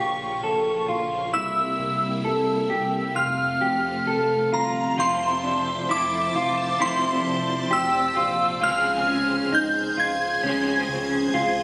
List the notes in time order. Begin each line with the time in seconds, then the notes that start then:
Already playing: A#1 A#2 C#3 F3 F4 C#6
0.00 G4
0.43 A#1 A4
0.89 A#1 F4
1.33 C2 C3 G3 A#3 E4 E6
1.79 C2
2.25 C2 A4
2.70 C2 G4
3.15 F1 F3 A3 F4 F6
3.61 F1 G4
4.06 F1 A4
4.52 G1 F4 A#5
4.97 F1 F2 C3 F3 C4 E4 F4 A4 C5 E5 A5 C6
5.44 D4
5.87 F1 F3 C4 E4 D6
5.93 A4
6.34 F1 F4
6.78 F1 F2 C3 F3 E4 D5
6.82 C4 E4 A4 C6
7.26 F1
7.71 F1 G4 E6
8.16 A#1 F4
8.59 C#2 C#3 F3 F4 G#4 C5 G#5 C6
8.63 G#3 C4 G#4 F6
9.07 C#4
9.52 C#2 D#4 G6
9.97 C#2 F4 G#6
10.41 C#2 C#3 F3 C#4
10.46 G#3 C4 G#4
10.89 C#2
11.34 C#2 F4